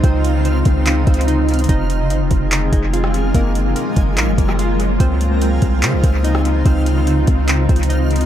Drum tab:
HH |x-----------x-----------x-----------x-----------x-----------x---x---x---x-----------x--x--x--x--|x-----------x-----------x-----------x-----------x-----------x-----------x-----------x-----------|x-----------x-----------x-----------x-----------x-----------x-----------x-----------x-----------|x-----------x-----------x-----------x-----------x-----------x-----------x-----------x-----------|
CP |------------------------------------------------x-----------------------------------------------|------------------------------------------------x-----------------------------------------------|------------------------------------------------x-----------------------------------------------|------------------------------------------------x-----------------------------------------------|
SD |------------------------------------------------------------------------------------------------|------------------------------------------------------------------------------r-----------------|------------------------------------------------------------------r-----------------------------|------------------------------------------------------------------------------r-----------------|
BD |o-----------------------------------o-----------------------o-----------------------------------|o-----------------------------------o-----------------------o-----------------------------------|o-----------------------------------o-----------------------o-----------------------------------|o-----------------------------------o-----------------------o-----------------------------------|

HH |x-----------x-----------x-----------x-----------x-----------x---x---x---x-----------x--x--x-----|
CP |------------------------------------------------x-----------------------------------------------|
SD |------------------------------------------------------------------------------------------------|
BD |o-----------------------------------o-----------------------o-----------------------------------|